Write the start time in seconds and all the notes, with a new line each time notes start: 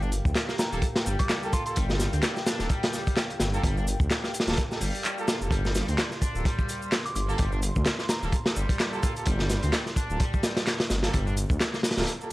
Already playing: G1 G4 A#4 F5 G5
0.02 D4, shaker
0.12 closed hi-hat, shaker
0.25 D2, kick, shaker
0.35 snare, clap, closed hi-hat, shaker
0.49 A#3, snare, shaker
0.58 A#5, snare, closed hi-hat, shaker
0.72 D1 A#3 F4 G4 A4, shaker
0.82 kick, closed hi-hat, shaker
0.96 A#3 F4 G4 A4, snare, closed hi-hat, shaker
1.06 G1 G3, shaker
1.19 D6, kick, closed hi-hat, shaker
1.29 snare, clap, closed hi-hat, shaker
1.43 A#3 F4 G4 A4, shaker
1.53 F4 C6, kick, closed hi-hat, shaker
1.66 A#3 F4 G4 A4 C6, closed hi-hat, shaker
1.76 G1 G3, kick, closed hi-hat, shaker
1.90 snare, shaker
2.00 snare, closed hi-hat, shaker
2.13 D2 C4, closed hi-hat, shaker
2.23 G3, snare, clap, closed hi-hat, shaker
2.36 snare, shaker
2.47 D4, snare, closed hi-hat, shaker
2.59 D1 A#3 F4 G4 A4, snare, shaker
2.69 G3, kick, closed hi-hat, shaker
2.83 snare, closed hi-hat, shaker
2.93 snare, shaker
3.07 kick, closed hi-hat, shaker
3.17 snare, clap, closed hi-hat, shaker
3.30 closed hi-hat, shaker
3.40 G1, snare, closed hi-hat, shaker
3.53 A#3 F4 G4 A4, shaker
3.64 G1 G3, kick, closed hi-hat, shaker
3.77 D4, shaker
3.87 closed hi-hat, shaker
4.00 D2, kick, shaker
4.10 snare, clap, closed hi-hat, shaker
4.24 A#3, snare, shaker
4.34 closed hi-hat, shaker
4.40 snare, closed hi-hat
4.47 D1 A#3 F4 G4 A4, snare, closed hi-hat, shaker
4.52 snare, closed hi-hat
4.57 kick, closed hi-hat, shaker
4.71 A#3 F4 G4 A4, snare, shaker
4.81 G1 G3, open hi-hat, shaker
4.95 shaker
5.05 clap, closed hi-hat, shaker
5.18 A#3 F4 G4 A4, shaker
5.28 F4, snare, closed hi-hat, shaker
5.41 F1 A#3 F4 G4 A4, shaker
5.51 G1 G3 C6, kick, closed hi-hat, shaker
5.65 snare, shaker
5.75 snare, closed hi-hat, shaker
5.88 D2 C4, closed hi-hat, shaker
5.98 G3, snare, clap, closed hi-hat, shaker
6.11 snare, shaker
6.22 D4, kick, closed hi-hat, shaker
6.35 D1 A#3 F4 G4 A4, shaker
6.45 G3, kick, closed hi-hat, shaker
6.59 kick, shaker
6.69 closed hi-hat, shaker
6.82 shaker
6.92 snare, clap, closed hi-hat, shaker
7.05 D6, closed hi-hat, shaker
7.16 G1 D6, closed hi-hat, shaker
7.29 A#3 F4 G4 A4, shaker
7.38 G1 G3, kick, closed hi-hat, shaker
7.52 D4, shaker
7.62 closed hi-hat, shaker
7.76 D2, kick, shaker
7.86 snare, clap, closed hi-hat, shaker
7.99 A#3, snare, shaker
8.09 A#5, snare, closed hi-hat, shaker
8.22 D1 A#3 F4 G4 A4, shaker
8.32 kick, closed hi-hat, shaker
8.46 A#3 F4 G4 A4, snare, closed hi-hat, shaker
8.56 G1 G3, shaker
8.69 kick, closed hi-hat, shaker
8.79 snare, clap, closed hi-hat, shaker
8.93 A#3 F4 G4 A4, shaker
9.03 F4, kick, closed hi-hat, shaker
9.16 A#3 F4 G4 A4, closed hi-hat, shaker
9.26 G1 G3, kick, closed hi-hat, shaker
9.39 snare, shaker
9.49 snare, closed hi-hat, shaker
9.63 D2 C4, closed hi-hat, shaker
9.73 G3, snare, clap, closed hi-hat, shaker
9.86 snare, shaker
9.96 D4, kick, closed hi-hat, shaker
10.10 D1 A#3 F4 G4 A4, shaker
10.20 G3, kick, closed hi-hat, shaker
10.33 kick, shaker
10.43 snare, closed hi-hat, shaker
10.57 snare, closed hi-hat, shaker
10.66 snare, clap, closed hi-hat, shaker
10.80 snare, closed hi-hat, shaker
10.90 G1, snare, closed hi-hat, shaker
11.03 A#3 F4 G4 A4, snare, closed hi-hat, shaker
11.14 G1 G3, kick, closed hi-hat, shaker
11.27 D4, shaker
11.37 closed hi-hat, shaker
11.50 D2, kick, shaker
11.60 snare, clap, closed hi-hat, shaker
11.74 A#3, snare, shaker
11.83 snare, closed hi-hat, shaker
11.91 snare, closed hi-hat
11.97 D1 A#3 F4 G4 A4, snare, closed hi-hat, shaker
12.02 snare, closed hi-hat
12.07 closed hi-hat, shaker
12.21 A#3 F4 G4 A4, shaker